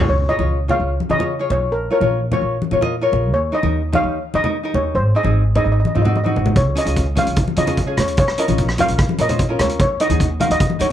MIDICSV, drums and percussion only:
0, 0, Header, 1, 2, 480
1, 0, Start_track
1, 0, Key_signature, -5, "major"
1, 0, Tempo, 404585
1, 104, Time_signature, 4, 2, 24, 8
1, 12958, End_track
2, 0, Start_track
2, 0, Title_t, "Drums"
2, 461, Note_on_c, 9, 63, 52
2, 580, Note_off_c, 9, 63, 0
2, 823, Note_on_c, 9, 63, 47
2, 823, Note_on_c, 9, 64, 56
2, 942, Note_off_c, 9, 63, 0
2, 942, Note_off_c, 9, 64, 0
2, 1190, Note_on_c, 9, 63, 54
2, 1302, Note_off_c, 9, 63, 0
2, 1302, Note_on_c, 9, 63, 56
2, 1421, Note_off_c, 9, 63, 0
2, 1424, Note_on_c, 9, 64, 52
2, 1543, Note_off_c, 9, 64, 0
2, 1784, Note_on_c, 9, 64, 58
2, 1902, Note_off_c, 9, 64, 0
2, 2389, Note_on_c, 9, 63, 58
2, 2507, Note_off_c, 9, 63, 0
2, 2748, Note_on_c, 9, 63, 55
2, 2748, Note_on_c, 9, 64, 55
2, 2866, Note_off_c, 9, 63, 0
2, 2866, Note_off_c, 9, 64, 0
2, 3105, Note_on_c, 9, 63, 56
2, 3218, Note_off_c, 9, 63, 0
2, 3218, Note_on_c, 9, 63, 56
2, 3337, Note_off_c, 9, 63, 0
2, 3349, Note_on_c, 9, 64, 55
2, 3468, Note_off_c, 9, 64, 0
2, 3713, Note_on_c, 9, 64, 56
2, 3831, Note_off_c, 9, 64, 0
2, 4309, Note_on_c, 9, 63, 61
2, 4428, Note_off_c, 9, 63, 0
2, 4667, Note_on_c, 9, 63, 56
2, 4667, Note_on_c, 9, 64, 61
2, 4786, Note_off_c, 9, 63, 0
2, 4786, Note_off_c, 9, 64, 0
2, 5146, Note_on_c, 9, 63, 58
2, 5265, Note_off_c, 9, 63, 0
2, 5266, Note_on_c, 9, 64, 56
2, 5385, Note_off_c, 9, 64, 0
2, 5628, Note_on_c, 9, 64, 58
2, 5747, Note_off_c, 9, 64, 0
2, 6223, Note_on_c, 9, 63, 60
2, 6342, Note_off_c, 9, 63, 0
2, 6590, Note_on_c, 9, 64, 56
2, 6708, Note_off_c, 9, 64, 0
2, 6941, Note_on_c, 9, 63, 56
2, 7060, Note_off_c, 9, 63, 0
2, 7065, Note_on_c, 9, 63, 58
2, 7182, Note_on_c, 9, 64, 54
2, 7184, Note_off_c, 9, 63, 0
2, 7301, Note_off_c, 9, 64, 0
2, 7303, Note_on_c, 9, 63, 45
2, 7422, Note_off_c, 9, 63, 0
2, 7427, Note_on_c, 9, 63, 50
2, 7546, Note_off_c, 9, 63, 0
2, 7549, Note_on_c, 9, 64, 55
2, 7660, Note_off_c, 9, 64, 0
2, 7660, Note_on_c, 9, 64, 67
2, 7779, Note_off_c, 9, 64, 0
2, 7779, Note_on_c, 9, 42, 55
2, 7781, Note_on_c, 9, 36, 85
2, 7898, Note_off_c, 9, 42, 0
2, 7900, Note_off_c, 9, 36, 0
2, 8026, Note_on_c, 9, 42, 69
2, 8143, Note_off_c, 9, 42, 0
2, 8143, Note_on_c, 9, 42, 53
2, 8260, Note_off_c, 9, 42, 0
2, 8260, Note_on_c, 9, 42, 54
2, 8263, Note_on_c, 9, 36, 69
2, 8379, Note_off_c, 9, 42, 0
2, 8382, Note_off_c, 9, 36, 0
2, 8500, Note_on_c, 9, 42, 67
2, 8506, Note_on_c, 9, 63, 57
2, 8506, Note_on_c, 9, 64, 57
2, 8619, Note_off_c, 9, 42, 0
2, 8621, Note_on_c, 9, 42, 50
2, 8625, Note_off_c, 9, 63, 0
2, 8625, Note_off_c, 9, 64, 0
2, 8735, Note_off_c, 9, 42, 0
2, 8735, Note_on_c, 9, 42, 54
2, 8742, Note_on_c, 9, 36, 93
2, 8853, Note_off_c, 9, 42, 0
2, 8860, Note_off_c, 9, 36, 0
2, 8869, Note_on_c, 9, 63, 60
2, 8974, Note_on_c, 9, 42, 64
2, 8987, Note_off_c, 9, 63, 0
2, 8987, Note_on_c, 9, 63, 60
2, 9092, Note_off_c, 9, 42, 0
2, 9099, Note_on_c, 9, 42, 45
2, 9105, Note_off_c, 9, 63, 0
2, 9107, Note_on_c, 9, 64, 58
2, 9217, Note_off_c, 9, 42, 0
2, 9219, Note_on_c, 9, 42, 50
2, 9224, Note_on_c, 9, 36, 66
2, 9225, Note_off_c, 9, 64, 0
2, 9338, Note_off_c, 9, 42, 0
2, 9342, Note_off_c, 9, 36, 0
2, 9459, Note_on_c, 9, 37, 69
2, 9459, Note_on_c, 9, 42, 67
2, 9463, Note_on_c, 9, 64, 56
2, 9578, Note_off_c, 9, 37, 0
2, 9578, Note_off_c, 9, 42, 0
2, 9581, Note_off_c, 9, 64, 0
2, 9581, Note_on_c, 9, 42, 46
2, 9693, Note_off_c, 9, 42, 0
2, 9693, Note_on_c, 9, 42, 49
2, 9703, Note_on_c, 9, 36, 94
2, 9812, Note_off_c, 9, 42, 0
2, 9821, Note_on_c, 9, 37, 64
2, 9822, Note_off_c, 9, 36, 0
2, 9939, Note_on_c, 9, 42, 66
2, 9940, Note_off_c, 9, 37, 0
2, 10057, Note_off_c, 9, 42, 0
2, 10059, Note_on_c, 9, 42, 48
2, 10071, Note_on_c, 9, 63, 62
2, 10178, Note_off_c, 9, 42, 0
2, 10179, Note_on_c, 9, 42, 49
2, 10184, Note_on_c, 9, 36, 72
2, 10189, Note_off_c, 9, 63, 0
2, 10298, Note_off_c, 9, 42, 0
2, 10303, Note_off_c, 9, 36, 0
2, 10304, Note_on_c, 9, 37, 66
2, 10416, Note_on_c, 9, 42, 64
2, 10422, Note_off_c, 9, 37, 0
2, 10430, Note_on_c, 9, 63, 59
2, 10430, Note_on_c, 9, 64, 62
2, 10534, Note_off_c, 9, 42, 0
2, 10538, Note_on_c, 9, 42, 49
2, 10548, Note_off_c, 9, 63, 0
2, 10548, Note_off_c, 9, 64, 0
2, 10657, Note_off_c, 9, 42, 0
2, 10659, Note_on_c, 9, 37, 68
2, 10659, Note_on_c, 9, 42, 52
2, 10663, Note_on_c, 9, 36, 98
2, 10778, Note_off_c, 9, 37, 0
2, 10778, Note_off_c, 9, 42, 0
2, 10782, Note_off_c, 9, 36, 0
2, 10785, Note_on_c, 9, 63, 61
2, 10895, Note_on_c, 9, 42, 67
2, 10899, Note_off_c, 9, 63, 0
2, 10899, Note_on_c, 9, 63, 63
2, 11013, Note_off_c, 9, 42, 0
2, 11017, Note_off_c, 9, 63, 0
2, 11020, Note_on_c, 9, 42, 50
2, 11025, Note_on_c, 9, 64, 57
2, 11139, Note_off_c, 9, 42, 0
2, 11139, Note_on_c, 9, 42, 52
2, 11144, Note_off_c, 9, 64, 0
2, 11144, Note_on_c, 9, 36, 77
2, 11257, Note_off_c, 9, 42, 0
2, 11262, Note_off_c, 9, 36, 0
2, 11379, Note_on_c, 9, 37, 72
2, 11379, Note_on_c, 9, 42, 72
2, 11385, Note_on_c, 9, 64, 67
2, 11498, Note_off_c, 9, 37, 0
2, 11498, Note_off_c, 9, 42, 0
2, 11501, Note_on_c, 9, 42, 54
2, 11504, Note_off_c, 9, 64, 0
2, 11619, Note_off_c, 9, 42, 0
2, 11619, Note_on_c, 9, 42, 54
2, 11622, Note_on_c, 9, 36, 96
2, 11738, Note_off_c, 9, 42, 0
2, 11741, Note_off_c, 9, 36, 0
2, 11861, Note_on_c, 9, 42, 74
2, 11980, Note_off_c, 9, 42, 0
2, 11980, Note_on_c, 9, 42, 54
2, 11980, Note_on_c, 9, 63, 63
2, 12099, Note_off_c, 9, 42, 0
2, 12099, Note_off_c, 9, 63, 0
2, 12102, Note_on_c, 9, 36, 75
2, 12106, Note_on_c, 9, 42, 58
2, 12221, Note_off_c, 9, 36, 0
2, 12225, Note_off_c, 9, 42, 0
2, 12344, Note_on_c, 9, 42, 69
2, 12345, Note_on_c, 9, 63, 55
2, 12345, Note_on_c, 9, 64, 59
2, 12462, Note_off_c, 9, 42, 0
2, 12463, Note_off_c, 9, 63, 0
2, 12463, Note_off_c, 9, 64, 0
2, 12464, Note_on_c, 9, 42, 55
2, 12579, Note_off_c, 9, 42, 0
2, 12579, Note_on_c, 9, 36, 97
2, 12579, Note_on_c, 9, 42, 57
2, 12693, Note_on_c, 9, 63, 60
2, 12697, Note_off_c, 9, 42, 0
2, 12698, Note_off_c, 9, 36, 0
2, 12811, Note_off_c, 9, 63, 0
2, 12811, Note_on_c, 9, 63, 56
2, 12818, Note_on_c, 9, 42, 67
2, 12929, Note_off_c, 9, 63, 0
2, 12936, Note_off_c, 9, 42, 0
2, 12958, End_track
0, 0, End_of_file